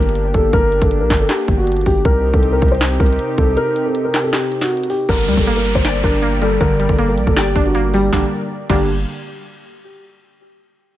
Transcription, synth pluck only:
0, 0, Header, 1, 2, 480
1, 0, Start_track
1, 0, Key_signature, -2, "minor"
1, 0, Tempo, 379747
1, 672, Time_signature, 4, 2, 24, 8
1, 13867, End_track
2, 0, Start_track
2, 0, Title_t, "Synth pluck"
2, 0, Program_c, 0, 84
2, 6439, Note_on_c, 0, 50, 98
2, 6678, Note_on_c, 0, 55, 77
2, 6916, Note_on_c, 0, 58, 98
2, 7396, Note_on_c, 0, 74, 109
2, 7636, Note_off_c, 0, 50, 0
2, 7639, Note_on_c, 0, 62, 83
2, 7851, Note_off_c, 0, 58, 0
2, 7866, Note_on_c, 0, 58, 94
2, 7875, Note_off_c, 0, 55, 0
2, 8115, Note_on_c, 0, 55, 89
2, 8353, Note_on_c, 0, 50, 99
2, 8571, Note_off_c, 0, 55, 0
2, 8586, Note_on_c, 0, 55, 84
2, 8594, Note_off_c, 0, 74, 0
2, 8815, Note_off_c, 0, 58, 0
2, 8831, Note_on_c, 0, 58, 89
2, 8835, Note_off_c, 0, 62, 0
2, 9315, Note_on_c, 0, 74, 97
2, 9550, Note_on_c, 0, 62, 87
2, 9553, Note_off_c, 0, 50, 0
2, 9777, Note_off_c, 0, 58, 0
2, 9789, Note_off_c, 0, 55, 0
2, 9792, Note_on_c, 0, 58, 88
2, 10037, Note_on_c, 0, 55, 83
2, 10255, Note_off_c, 0, 55, 0
2, 10255, Note_off_c, 0, 58, 0
2, 10256, Note_off_c, 0, 62, 0
2, 10271, Note_on_c, 0, 50, 89
2, 10271, Note_on_c, 0, 55, 82
2, 10271, Note_on_c, 0, 58, 80
2, 10271, Note_on_c, 0, 62, 97
2, 10273, Note_off_c, 0, 74, 0
2, 10405, Note_off_c, 0, 50, 0
2, 10405, Note_off_c, 0, 55, 0
2, 10405, Note_off_c, 0, 58, 0
2, 10405, Note_off_c, 0, 62, 0
2, 10991, Note_on_c, 0, 50, 86
2, 10991, Note_on_c, 0, 58, 81
2, 10991, Note_on_c, 0, 62, 99
2, 10992, Note_on_c, 0, 55, 77
2, 11215, Note_off_c, 0, 50, 0
2, 11215, Note_off_c, 0, 55, 0
2, 11215, Note_off_c, 0, 58, 0
2, 11215, Note_off_c, 0, 62, 0
2, 13867, End_track
0, 0, End_of_file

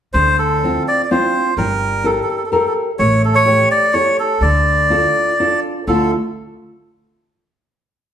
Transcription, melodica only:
0, 0, Header, 1, 2, 480
1, 0, Start_track
1, 0, Key_signature, -1, "minor"
1, 0, Tempo, 478469
1, 139, Time_signature, 3, 2, 24, 8
1, 8159, End_track
2, 0, Start_track
2, 0, Title_t, "Melodica"
2, 0, Program_c, 0, 22
2, 135, Note_on_c, 0, 72, 75
2, 372, Note_off_c, 0, 72, 0
2, 389, Note_on_c, 0, 69, 64
2, 835, Note_off_c, 0, 69, 0
2, 883, Note_on_c, 0, 74, 80
2, 1024, Note_off_c, 0, 74, 0
2, 1045, Note_on_c, 0, 74, 55
2, 1103, Note_off_c, 0, 74, 0
2, 1113, Note_on_c, 0, 72, 66
2, 1549, Note_off_c, 0, 72, 0
2, 1580, Note_on_c, 0, 70, 77
2, 2064, Note_on_c, 0, 69, 59
2, 2068, Note_off_c, 0, 70, 0
2, 2117, Note_off_c, 0, 69, 0
2, 2132, Note_on_c, 0, 69, 40
2, 2205, Note_off_c, 0, 69, 0
2, 2234, Note_on_c, 0, 69, 48
2, 2297, Note_off_c, 0, 69, 0
2, 2314, Note_on_c, 0, 69, 35
2, 2367, Note_off_c, 0, 69, 0
2, 2382, Note_on_c, 0, 69, 35
2, 2438, Note_off_c, 0, 69, 0
2, 2465, Note_on_c, 0, 69, 36
2, 2515, Note_off_c, 0, 69, 0
2, 2534, Note_on_c, 0, 69, 43
2, 2590, Note_off_c, 0, 69, 0
2, 2611, Note_on_c, 0, 69, 35
2, 2666, Note_off_c, 0, 69, 0
2, 2681, Note_on_c, 0, 69, 44
2, 2744, Note_off_c, 0, 69, 0
2, 2997, Note_on_c, 0, 73, 82
2, 3233, Note_off_c, 0, 73, 0
2, 3259, Note_on_c, 0, 69, 62
2, 3359, Note_on_c, 0, 73, 96
2, 3360, Note_off_c, 0, 69, 0
2, 3701, Note_off_c, 0, 73, 0
2, 3724, Note_on_c, 0, 74, 81
2, 3940, Note_on_c, 0, 73, 80
2, 3959, Note_off_c, 0, 74, 0
2, 4183, Note_off_c, 0, 73, 0
2, 4208, Note_on_c, 0, 69, 68
2, 4431, Note_on_c, 0, 74, 69
2, 4441, Note_off_c, 0, 69, 0
2, 5620, Note_off_c, 0, 74, 0
2, 5898, Note_on_c, 0, 69, 67
2, 6133, Note_off_c, 0, 69, 0
2, 8159, End_track
0, 0, End_of_file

